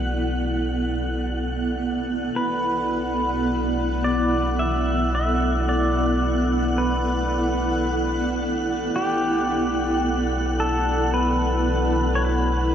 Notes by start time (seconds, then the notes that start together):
Already playing: B1 B3 E4 A4 D5 F#5 F#6
2.36 B1 B4 F#5 F#6
4.04 D5
4.59 E5
5.15 E5
5.69 D5
6.78 B4
8.95 B1 G4
10.60 A4
11.14 B4
12.15 C#5
12.25 B4